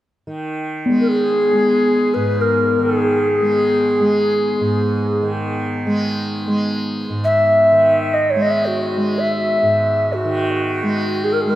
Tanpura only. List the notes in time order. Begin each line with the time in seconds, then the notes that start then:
0.27 D#3
0.89 G#3
1.53 G#3
2.16 G#2
2.78 D#3
3.41 G#3
4.00 G#3
4.61 G#2
5.22 D#3
5.86 G#3
6.48 G#3
7.10 G#2
7.72 D#3
8.35 G#3
8.97 G#3
9.63 G#2
10.25 D#3
10.83 G#3
11.46 G#3